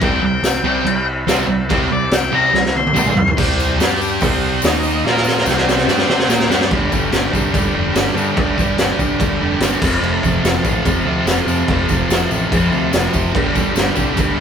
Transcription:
0.00 picked electric bass C2, distorted electric guitar C3 G3 C4, transistor combo organ G4 C5 E5, lead electric guitar G5, kick, crash
0.22 picked electric bass C2, lead electric guitar G5
0.42 picked electric bass C2, snare, tambourine, crash
0.64 picked electric bass C2, distorted electric guitar C3 G3 C4
0.84 picked electric bass C2, crash
1.27 picked electric bass C2, distorted electric guitar C3 G3 C4, snare, tambourine, crash
1.47 picked electric bass C2
1.69 picked electric bass C2, distorted electric guitar C3 G3 C4, kick, crash
1.90 picked electric bass C2, lead electric guitar D5
2.11 picked electric bass C2, lead electric guitar G5, snare, tambourine, crash
2.32 picked electric bass C2, distorted electric guitar C3 G3 C4, lead electric guitar A#5
2.53 picked electric bass C2, snare
2.65 snare
2.75 lead electric guitar C6, high tom
2.87 high tom
2.94 picked electric bass C2, distorted electric guitar C3 G3 C4, mid tom, tambourine
3.07 mid tom
3.17 picked electric bass C2, floor tom
3.27 floor tom
3.36 picked electric bass C2, distorted electric guitar C3 G3 C4, transistor combo organ G4 C5 G5, kick, crash
3.50 tambourine
3.60 tambourine
3.78 picked electric bass G2, distorted electric guitar G3 D4 G4, transistor combo organ G4 D5 G5, snare, open hi-hat, tambourine
3.91 tambourine
4.01 tambourine
4.12 tambourine
4.20 picked electric bass C2, distorted electric guitar C3 G3 C4, transistor combo organ G4 C5 G5, kick, open hi-hat, tambourine
4.32 tambourine
4.62 picked electric bass D#2, distorted electric guitar D#3 A#3 D#4, transistor combo organ D#4 A#4 D#5, snare, open hi-hat, tambourine
4.83 tambourine
4.94 tambourine
5.04 picked electric bass A#2, distorted electric guitar A#3 F4 A#4, transistor combo organ F4 A#4 F5, snare
5.15 snare, tambourine
5.24 snare, tambourine
5.38 snare
5.46 picked electric bass C2, distorted electric guitar C3 G3 C4, transistor combo organ G4 C5 G5, snare, tambourine
5.58 snare
5.69 snare, tambourine
5.78 snare, tambourine
5.88 picked electric bass G2, distorted electric guitar G3 D4 G4, snare, tambourine
5.98 snare
6.09 picked electric bass C3, distorted electric guitar C4 G4 C5, snare
6.19 snare
6.29 picked electric bass A#2, distorted electric guitar A#3 F4 A#4, snare, tambourine
6.40 snare
6.49 picked electric bass G2, distorted electric guitar G3 D4 G4, snare, tambourine
6.61 snare
6.71 picked electric bass G1, distorted electric guitar G2 D3 G3, transistor combo organ B4 D5 G5, kick, crash
6.91 picked electric bass G1, distorted electric guitar G2 D3 G3, kick, tambourine
7.10 picked electric bass G1, distorted electric guitar G2 D3 G3, snare, tambourine, crash
7.31 picked electric bass C2, distorted electric guitar G2 D3 G3, kick, tambourine
7.52 picked electric bass G1, distorted electric guitar G2 D3 G3, kick, tambourine, crash
7.73 picked electric bass F1, distorted electric guitar G2 D3 G3
7.94 picked electric bass G1, distorted electric guitar G2 D3 G3, snare, tambourine, crash
8.15 picked electric bass G2, distorted electric guitar G2 D3 G3, tambourine
8.37 picked electric bass G1, distorted electric guitar G2 D3 G3, kick, crash
8.57 picked electric bass G1, distorted electric guitar G2 D3 G3, kick, tambourine
8.77 picked electric bass G1, distorted electric guitar G2 D3 G3, snare, tambourine, crash
8.99 picked electric bass C2, distorted electric guitar G2 D3 G3, kick, tambourine
9.20 picked electric bass G1, distorted electric guitar G2 D3 G3, kick, tambourine, crash
9.39 picked electric bass F1, distorted electric guitar G2 D3 G3
9.60 picked electric bass G1, distorted electric guitar G2 D3 G3, snare, tambourine, crash
9.82 picked electric bass F1, distorted electric guitar F2 C3 F3, transistor combo organ A4 C5 F5, kick, tambourine, crash
10.01 picked electric bass F1, distorted electric guitar F2 C3 F3, crash
10.22 picked electric bass F1, distorted electric guitar F2 C3 F3, kick, tambourine
10.42 picked electric bass F1, distorted electric guitar F2 C3 F3, snare, tambourine, crash
10.64 picked electric bass A1, distorted electric guitar F2 C3 F3, kick, tambourine
10.85 picked electric bass F1, distorted electric guitar F2 C3 F3, kick, tambourine, crash
11.04 picked electric bass D2, distorted electric guitar F2 C3 F3
11.25 picked electric bass F1, distorted electric guitar F2 C3 F3, snare, tambourine, crash
11.46 picked electric bass F2, distorted electric guitar F2 C3 F3, tambourine
11.68 picked electric bass F1, distorted electric guitar F2 C3 F3, kick, crash
11.89 picked electric bass F1, distorted electric guitar F2 C3 F3, kick, tambourine
12.09 picked electric bass F1, distorted electric guitar F2 C3 F3, snare, tambourine, crash
12.30 picked electric bass A1, distorted electric guitar F2 C3 F3, tambourine
12.52 picked electric bass F1, distorted electric guitar F2 C3 F3, kick, tambourine, crash
12.71 picked electric bass D2, distorted electric guitar F2 C3 F3, tambourine
12.92 picked electric bass F1, distorted electric guitar F2 C3 F3, snare, tambourine, crash
13.13 picked electric bass F1, distorted electric guitar F2 C3 F3, kick, tambourine
13.34 picked electric bass G1, distorted electric guitar G2 D3 G3, transistor combo organ G4 B4 D5, kick, crash
13.54 picked electric bass G1, distorted electric guitar G2 D3 G3, kick, tambourine
13.73 picked electric bass G1, distorted electric guitar G2 D3 G3, tambourine, crash
13.77 snare
13.94 picked electric bass C2, distorted electric guitar G2 D3 G3, kick, tambourine
14.15 picked electric bass G1, distorted electric guitar G2 D3 G3, kick, tambourine, crash
14.36 picked electric bass F1, distorted electric guitar G2

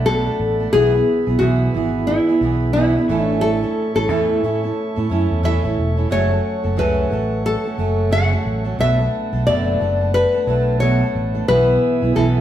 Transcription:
Already playing: fingered electric bass B1, tonewheel organ A4 D5 F#5 B5
0.06 steel-string acoustic guitar B2 F#3 A3 D4 A4, nylon-string guitar A4
0.26 steel-string acoustic guitar A3 D4 A4
0.40 fingered electric bass A1
0.60 steel-string acoustic guitar A3 D4 A4
0.72 fingered electric bass B1, steel-string acoustic guitar B2 E3 B3 E4 G#4, tonewheel organ G#4 B4 E5, nylon-string guitar G#4
0.93 steel-string acoustic guitar B3 E4 G#4
1.26 fingered electric bass B1, steel-string acoustic guitar B3 E4 G#4
1.39 fingered electric bass B1, steel-string acoustic guitar B2 E3 B3 E4, nylon-string guitar F#4
1.43 steel-string acoustic guitar G#4
1.74 fingered electric bass G#1, steel-string acoustic guitar E3 B3 E4 G#4
2.07 nylon-string guitar E4
2.28 steel-string acoustic guitar B3 E4 G#4
2.41 fingered electric bass B1, steel-string acoustic guitar E3 B3 E4 G#4
2.73 steel-string acoustic guitar B2 E3 B3 E4, nylon-string guitar E4
2.77 steel-string acoustic guitar G#4
2.95 steel-string acoustic guitar B3 E4 G#4
3.08 fingered electric bass A1, steel-string acoustic guitar A2 E3 A3 C#4 E4 A4, tonewheel organ A4 C#5 C#6
3.25 nylon-string guitar D4
3.41 nylon-string guitar A4
3.62 steel-string acoustic guitar A3 C#4 E4 A4
3.94 fingered electric bass A1, steel-string acoustic guitar A3 C#4 E4 A4, nylon-string guitar A4
4.09 fingered electric bass E2, steel-string acoustic guitar A2 E3 A3 C#4 E4 A4
4.43 fingered electric bass A2, steel-string acoustic guitar A3 C#4 E4 A4
4.63 steel-string acoustic guitar A3 C#4 E4 A4
4.96 fingered electric bass A2, steel-string acoustic guitar A3 C#4 E4 A4
5.10 fingered electric bass F#2, steel-string acoustic guitar A3 C#4 E4 A4
5.31 fingered electric bass E2
5.43 steel-string acoustic guitar A2 E3 A3 C#4 E4 A4, nylon-string guitar E5
5.62 fingered electric bass A1, steel-string acoustic guitar A3 C#4 E4 A4
5.77 fingered electric bass E1
5.97 steel-string acoustic guitar A3 C#4 E4 A4
6.10 fingered electric bass F#1, steel-string acoustic guitar F#2 C#3 F#3 A3 C#4 A4, tonewheel organ A4 C#5 F#5 C#6, nylon-string guitar C#5
6.30 steel-string acoustic guitar F#3 A3 C#4 A4
6.63 fingered electric bass F#1, steel-string acoustic guitar F#3 A3 C#4 A4
6.76 fingered electric bass C#2, steel-string acoustic guitar F#2 C#3 F#3 A3 C#4 A4, nylon-string guitar B4
7.10 fingered electric bass A1, steel-string acoustic guitar F#3 A3 C#4 A4
7.46 nylon-string guitar A4
7.64 steel-string acoustic guitar F#3 A3 C#4 A4
7.77 fingered electric bass F#1, steel-string acoustic guitar F#3 A3 C#4 A4
8.10 steel-string acoustic guitar F#2 C#3 F#3 A3 C#4 A4, nylon-string guitar F#5
8.31 steel-string acoustic guitar F#3 A3 C#4 A4
8.45 fingered electric bass A1
8.64 steel-string acoustic guitar F#3 A3 C#4 A4
8.79 fingered electric bass B1, steel-string acoustic guitar B2 F#3 A3 D4 A4, tonewheel organ B4 A5, nylon-string guitar E5
8.98 steel-string acoustic guitar A3 D4 A4
9.33 fingered electric bass B1, steel-string acoustic guitar A3 D4 A4
9.46 fingered electric bass F#1, steel-string acoustic guitar B2 F#3 A3 D4 A4, nylon-string guitar D5
9.80 fingered electric bass F#1, steel-string acoustic guitar F#3 A3 D4 A4
10.01 steel-string acoustic guitar A3 D4 A4
10.14 nylon-string guitar B4
10.34 steel-string acoustic guitar A3 D4 A4
10.47 fingered electric bass B1, steel-string acoustic guitar F#3 A3 D4 A4
10.80 steel-string acoustic guitar B2 F#3 A3 D4 A4, nylon-string guitar C#5
11.01 steel-string acoustic guitar A3 D4 A4
11.15 fingered electric bass A1
11.34 steel-string acoustic guitar A3 D4 A4
11.48 fingered electric bass B1, steel-string acoustic guitar B2 E3 B3 E4 G#4, nylon-string guitar B4, tonewheel organ E5 G#5 E6
12.02 fingered electric bass B1, steel-string acoustic guitar B3 E4 G#4
12.15 fingered electric bass B1, steel-string acoustic guitar B2 E3 B3 E4, nylon-string guitar A4

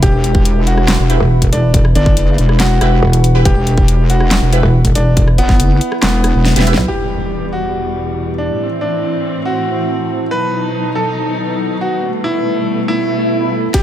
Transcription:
Already playing: ambient pad E4 B4
0.03 wobble bass E1, grand piano G4, kick, closed hi-hat
0.13 wobble bass E1
0.24 closed hi-hat
0.35 kick
0.45 closed hi-hat
0.67 grand piano F#4, closed hi-hat
0.78 cross-stick
0.88 snare, clap, closed hi-hat
0.99 wobble bass E1
1.10 synth stab E4 G4 B4, closed hi-hat
1.20 wobble bass E1
1.42 kick, closed hi-hat
1.52 wobble bass E1, grand piano D4, closed hi-hat
1.74 kick, closed hi-hat
1.85 cross-stick
1.95 wobble bass G1, grand piano D4, closed hi-hat
2.06 kick
2.17 wobble bass F#1, closed hi-hat
2.38 wobble bass E1, closed hi-hat
2.49 cross-stick
2.60 grand piano F#4, snare, clap, closed hi-hat
2.81 wobble bass E1, synth stab E4 G4 B4, cross-stick, closed hi-hat
3.03 wobble bass E1
3.13 closed hi-hat
3.24 closed hi-hat
3.35 synth stab E4 G4 B4
3.45 wobble bass E1, grand piano G4, kick, closed hi-hat
3.56 wobble bass E1
3.67 closed hi-hat
3.78 kick
3.88 closed hi-hat
4.10 grand piano F#4, closed hi-hat
4.20 cross-stick
4.31 snare, clap, closed hi-hat
4.42 wobble bass E1
4.53 synth stab E4 G4 B4, closed hi-hat
4.63 wobble bass E1
4.85 kick, closed hi-hat
4.95 wobble bass E1, grand piano D4, closed hi-hat
5.17 kick, closed hi-hat
5.28 cross-stick
5.38 wobble bass G1, grand piano B3, closed hi-hat
5.49 kick, snare
5.60 wobble bass F#1, closed hi-hat
5.81 closed hi-hat
5.92 cross-stick
6.03 wobble bass E1, grand piano B3, snare, clap, closed hi-hat
6.24 cross-stick, closed hi-hat
6.35 wobble bass E1
6.45 snare, closed hi-hat
6.56 wobble bass E1, synth stab E4 G4 B4, snare, closed hi-hat
6.67 synth stab E4 G4 B4, closed hi-hat
6.74 wobble bass B1, snare, closed hi-hat
6.88 string section E2 B2 G3, ambient pad E4, grand piano G4, impact
6.96 ambient pad B4
7.52 grand piano F#4, ambient pad E5
8.38 grand piano D4
8.60 string section A2 E3 C4
8.81 grand piano D4
8.89 ambient pad C5
9.37 ambient pad A5
9.45 grand piano F#4
10.31 string section B2 F#3 D#4, ambient pad D#4, grand piano B4
10.62 ambient pad B4
10.95 grand piano A4
11.08 ambient pad F#5
11.81 grand piano F#4
12.02 string section G3 A3, ambient pad B3
12.24 grand piano E4
12.31 ambient pad B5
12.43 ambient pad A4
12.88 grand piano E4, swell
13.74 string section E2 B2 G3, ambient pad E4, grand piano G4, kick, snare, closed hi-hat, riser

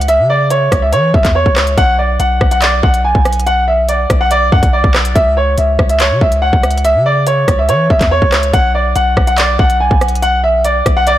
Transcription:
Already playing: 808-style bass C#2
0.01 closed hi-hat
0.08 grand piano E5, closed hi-hat
0.19 808-style bass C#3
0.30 grand piano D5
0.50 grand piano C#5, closed hi-hat
0.72 808-style bass C#2, kick, cross-stick, closed hi-hat
0.82 grand piano E5
0.93 808-style bass E3, grand piano C#5, closed hi-hat
1.14 808-style bass C#2, grand piano E5, kick
1.25 808-style bass E2, kick, clap, closed hi-hat
1.35 grand piano C#5
1.46 808-style bass C#2, kick
1.56 cross-stick, clap, closed hi-hat
1.67 closed hi-hat
1.78 808-style bass B1, grand piano F#5, kick, closed hi-hat
1.99 grand piano D5
2.20 808-style bass B1, grand piano F#5, closed hi-hat
2.41 808-style bass B1, kick, cross-stick
2.51 grand piano F#5, closed hi-hat
2.62 grand piano D5, clap, closed hi-hat
2.83 808-style bass B1, grand piano F#5, kick
2.94 closed hi-hat
3.04 grand piano G#5
3.15 808-style bass B1, kick
3.25 cross-stick, closed hi-hat
3.33 closed hi-hat
3.40 closed hi-hat
3.46 grand piano F#5, closed hi-hat
3.68 grand piano E5
3.89 grand piano D5, closed hi-hat
4.10 808-style bass B1, kick, cross-stick, closed hi-hat
4.21 grand piano F#5
4.31 grand piano D5, closed hi-hat
4.52 808-style bass F#2, grand piano F#5, kick
4.63 808-style bass B1, kick, closed hi-hat
4.73 grand piano D5
4.84 808-style bass B1, kick
4.94 cross-stick, clap, closed hi-hat
5.05 closed hi-hat
5.15 808-style bass C#2, grand piano E5, kick, closed hi-hat
5.37 grand piano C#5
5.58 808-style bass C#2, grand piano E5, closed hi-hat
5.79 808-style bass C#2, kick, cross-stick
5.89 grand piano E5, closed hi-hat
6.00 grand piano C#5, clap, closed hi-hat
6.11 808-style bass C#3
6.21 808-style bass C#2, grand piano E5, kick
6.32 closed hi-hat
6.42 grand piano F#5
6.53 808-style bass C#2, kick
6.63 cross-stick, closed hi-hat
6.71 closed hi-hat
6.78 closed hi-hat
6.85 grand piano E5, closed hi-hat
6.95 808-style bass C#3
7.06 grand piano D5
7.27 grand piano C#5, closed hi-hat
7.48 808-style bass C#2, kick, cross-stick, closed hi-hat
7.59 grand piano E5
7.69 808-style bass E3, grand piano C#5, closed hi-hat
7.90 808-style bass C#2, grand piano E5, kick
8.01 808-style bass E2, kick, clap, closed hi-hat
8.11 grand piano C#5
8.22 808-style bass C#2, kick
8.32 cross-stick, clap, closed hi-hat
8.43 closed hi-hat
8.53 808-style bass B1, grand piano F#5, kick, closed hi-hat
8.75 grand piano D5
8.96 808-style bass B1, grand piano F#5, closed hi-hat
9.17 808-style bass B1, kick, cross-stick
9.27 grand piano F#5, closed hi-hat
9.38 grand piano D5, clap, closed hi-hat
9.59 808-style bass B1, grand piano F#5, kick
9.70 closed hi-hat
9.80 grand piano G#5
9.91 808-style bass B1, kick
10.01 cross-stick, closed hi-hat
10.08 closed hi-hat
10.15 closed hi-hat
10.22 grand piano F#5, closed hi-hat
10.44 grand piano E5
10.65 grand piano D5, closed hi-hat
10.86 808-style bass B1, kick, cross-stick, closed hi-hat
10.97 grand piano F#5
11.07 grand piano D5, closed hi-hat

